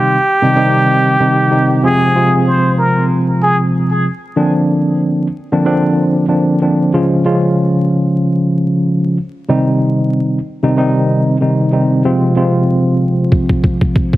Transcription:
0.00 0.16 C3 medium
0.00 0.16 D#3 medium
0.00 0.16 G3 medium
0.00 0.17 C4 medium
0.00 0.17 D#4 loud
0.00 1.79 G4 loud
0.41 0.54 C3 loud
0.41 0.54 D#3 medium
0.41 0.55 G3 medium
0.41 0.55 C4 medium
0.41 0.55 D#4 loud
0.55 1.15 C3 medium
0.55 1.15 D#3 medium
0.55 1.15 G3 medium
0.55 1.15 C4 medium
0.55 1.15 D#4 medium
1.19 1.49 C3 medium
1.19 1.49 D#3 medium
1.19 1.49 G3 medium
1.19 1.49 C4 medium
1.19 1.49 D#4 medium
1.51 1.80 C3 medium
1.51 1.81 D#3 medium
1.51 1.81 G3 medium
1.51 1.81 C4 medium
1.51 1.81 D#4 medium
1.83 2.13 C3 medium
1.83 2.13 F3 medium
1.83 2.13 G#3 medium
1.83 2.13 C4 medium
1.83 2.13 F4 loud
1.83 2.43 G#4 loud
2.15 4.06 C3 medium
2.15 4.06 F3 medium
2.15 4.06 G#3 medium
2.15 4.06 C4 medium
2.15 4.06 F4 loud
2.47 2.76 C5 medium
2.78 3.07 A#4 medium
3.43 3.58 G#4 medium
4.36 5.26 D3 medium
4.36 5.26 F3 medium
4.36 5.26 A#3 medium
4.36 5.26 C4 medium
4.36 5.26 D4 loud
5.52 5.64 D3 medium
5.52 5.64 F3 medium
5.52 5.64 A#3 medium
5.52 5.64 C4 medium
5.52 5.65 D4 loud
5.65 6.25 D3 medium
5.65 6.25 F3 medium
5.65 6.25 A#3 medium
5.65 6.25 C4 medium
5.65 6.25 D4 loud
6.28 6.59 D3 medium
6.28 6.59 F3 medium
6.28 6.59 A#3 medium
6.28 6.59 C4 medium
6.28 6.59 D4 medium
6.61 6.91 D3 medium
6.61 6.91 F3 medium
6.61 6.91 A#3 medium
6.61 6.91 C4 medium
6.61 6.92 D4 medium
6.93 7.23 C#3 medium
6.93 7.23 F3 medium
6.93 7.23 G#3 medium
6.93 7.23 C#4 medium
6.93 7.24 F4 loud
7.25 9.16 C#3 medium
7.25 9.16 F3 medium
7.25 9.16 G#3 medium
7.25 9.16 C#4 medium
7.25 9.17 F4 loud
9.48 10.38 C3 medium
9.48 10.38 D#3 medium
9.48 10.38 G3 medium
9.48 10.38 C4 medium
9.48 10.38 D#4 loud
10.63 10.76 C3 loud
10.63 10.76 D#3 medium
10.63 10.76 G3 medium
10.63 10.77 C4 medium
10.63 10.77 D#4 loud
10.77 11.36 C3 medium
10.77 11.36 D#3 medium
10.77 11.36 G3 medium
10.77 11.36 C4 medium
10.77 11.36 D#4 medium
11.41 11.70 C3 medium
11.41 11.70 D#3 medium
11.41 11.71 G3 medium
11.41 11.71 C4 medium
11.41 11.71 D#4 medium
11.72 12.02 C3 medium
11.72 12.02 D#3 medium
11.72 12.02 G3 medium
11.72 12.02 C4 medium
11.72 12.02 D#4 medium
12.05 12.34 C3 medium
12.05 12.34 F3 medium
12.05 12.34 G#3 medium
12.05 12.34 C4 medium
12.05 12.34 F4 loud
12.36 14.17 C3 medium
12.36 14.17 F3 medium
12.36 14.17 G#3 medium
12.36 14.17 C4 medium
12.36 14.17 F4 loud
13.32 kick medium
13.49 kick medium
13.64 kick medium
13.81 kick medium
13.96 kick medium
14.13 kick medium

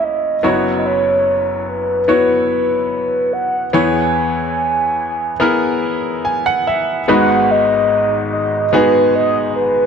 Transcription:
0.00 0.40 A#1 medium
0.00 0.40 A#2 soft
0.00 0.35 A#3 medium
0.00 0.35 C#4 medium
0.00 0.36 E4 medium
0.00 0.36 C#5 medium
0.04 0.78 D#5 medium
0.43 3.70 F#1 medium
0.43 3.70 F#2 medium
0.43 2.00 B3 medium
0.43 2.00 E4 medium
0.43 2.01 F#4 medium
0.43 2.01 C#5 medium
0.79 0.88 D#5 medium
0.86 1.68 C#5 medium
1.68 3.34 B4 medium
2.08 3.65 B3 medium
2.08 3.65 E4 medium
2.08 3.66 F#4 medium
2.08 3.66 C#5 medium
3.33 3.76 F#5 loud
3.73 7.05 E2 medium
3.73 7.04 E3 medium
3.73 5.32 B3 medium
3.73 5.32 E4 medium
3.73 5.32 G#4 medium
3.73 5.32 C#5 medium
3.73 6.25 G#5 medium
5.40 7.00 B3 medium
5.40 7.00 E4 medium
5.40 7.00 G#4 medium
5.40 7.01 A#4 medium
6.25 6.44 G#5 medium
6.46 6.65 F#5 medium
6.67 7.06 E5 medium
7.08 9.86 G#1 medium
7.08 9.86 G#2 medium
7.08 8.65 G#3 medium
7.08 8.65 B3 medium
7.08 8.65 D#4 medium
7.08 8.65 F#4 medium
7.08 8.65 B4 medium
7.08 7.52 F#5 loud
7.51 8.33 D#5 loud
8.33 8.77 D#5 medium
8.73 9.86 G#3 medium
8.73 9.86 B3 medium
8.73 9.86 D#4 medium
8.73 9.86 F#4 medium
8.73 9.86 G#4 medium
8.73 9.15 B4 loud
9.16 9.52 D#5 loud
9.56 9.86 B4 medium

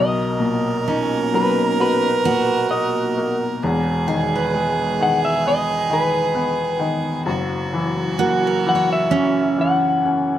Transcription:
0.00 3.57 B1 medium
0.00 3.57 B2 medium
0.00 3.64 A#4 loud
0.00 0.84 D#5 medium
0.40 2.20 A#2 medium
0.88 2.09 C#4 medium
0.88 2.67 D#4 medium
1.34 3.12 F#3 medium
1.34 1.67 B4 medium
1.67 1.77 A#4 medium
1.80 2.69 F#4 medium
1.80 2.67 B4 medium
2.25 3.58 A#2 medium
2.25 3.46 F#4 medium
2.71 3.59 F#4 medium
2.71 3.35 D#5 medium
3.18 3.61 A#3 medium
3.63 7.25 E1 medium
3.63 7.25 E2 medium
3.63 7.27 G#4 loud
4.07 4.99 D#3 medium
4.07 5.28 G#4 soft
4.35 5.54 B4 medium
4.54 6.33 G#3 medium
5.01 5.88 D#3 medium
5.01 5.22 F#5 loud
5.25 5.45 E5 loud
5.46 6.33 B3 medium
5.46 5.93 D#5 loud
5.90 6.78 D#3 medium
5.90 6.79 B4 medium
6.35 7.25 B3 medium
6.79 7.25 D#3 medium
7.26 10.39 F#1 medium
7.26 10.39 F#2 medium
7.26 10.39 F#4 medium
7.73 8.65 E3 medium
8.19 10.00 A#3 medium
8.19 9.41 F#4 medium
8.47 9.67 A#4 soft
8.66 9.57 E3 medium
8.66 8.91 F#5 medium
8.75 9.93 C#5 soft
8.93 9.61 E5 medium
9.11 10.34 C#4 medium
9.11 10.04 C#4 medium
9.58 10.39 E3 medium
9.58 10.39 F#5 medium
10.05 10.39 C#4 medium

